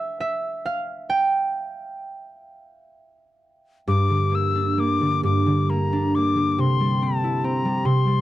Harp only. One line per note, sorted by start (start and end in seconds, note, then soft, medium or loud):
0.00 0.30 D5 medium
0.00 0.20 E5 medium
0.20 0.72 E5 medium
0.66 0.77 F5 medium
1.10 3.38 G5 medium
3.87 5.22 G2 medium
4.10 5.00 D3 soft
4.32 4.77 A#3 soft
4.55 5.92 D4 soft
4.78 5.69 A#3 soft
5.01 5.45 D3 soft
5.23 6.63 G2 medium
5.46 6.35 D3 soft
5.69 6.16 A#3 soft
5.93 8.21 D4 soft
6.16 8.21 A#3 soft
6.37 6.63 D3 soft
6.58 7.84 C3 medium
6.80 7.64 G3 soft
7.02 7.44 C4 soft
7.24 8.21 E4 soft
7.44 8.21 C4 soft
7.65 8.06 G3 soft
7.85 8.21 C3 medium
8.07 8.21 G3 soft